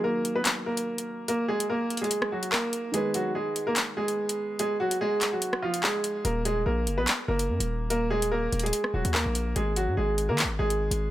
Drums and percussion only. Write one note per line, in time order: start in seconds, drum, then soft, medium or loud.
0.25 closed hi-hat medium
0.45 clap loud
0.45 closed hi-hat medium
0.77 closed hi-hat medium
0.98 closed hi-hat medium
1.28 closed hi-hat medium
1.60 closed hi-hat medium
1.90 closed hi-hat medium
1.97 closed hi-hat medium
2.04 closed hi-hat medium
2.11 closed hi-hat medium
2.22 cross-stick loud
2.43 closed hi-hat medium
2.52 clap loud
2.73 closed hi-hat medium
2.94 closed hi-hat medium
3.14 closed hi-hat medium
3.56 closed hi-hat medium
3.76 clap loud
3.76 closed hi-hat loud
4.08 closed hi-hat medium
4.29 closed hi-hat medium
4.59 closed hi-hat medium
4.91 closed hi-hat medium
5.21 clap medium
5.21 closed hi-hat medium
5.42 closed hi-hat medium
5.53 cross-stick loud
5.74 closed hi-hat medium
5.83 clap loud
6.04 closed hi-hat medium
6.25 closed hi-hat medium
6.45 closed hi-hat medium
6.87 closed hi-hat medium
7.07 clap loud
7.07 closed hi-hat medium
7.39 closed hi-hat medium
7.60 closed hi-hat medium
7.90 closed hi-hat medium
8.22 closed hi-hat medium
8.53 closed hi-hat medium
8.59 closed hi-hat medium
8.66 closed hi-hat medium
8.73 closed hi-hat medium
8.84 cross-stick medium
9.05 closed hi-hat medium
9.14 clap loud
9.35 closed hi-hat medium
9.56 closed hi-hat medium
9.76 closed hi-hat medium
10.18 closed hi-hat medium
10.38 clap loud
10.38 closed hi-hat medium
10.70 closed hi-hat medium
10.91 closed hi-hat medium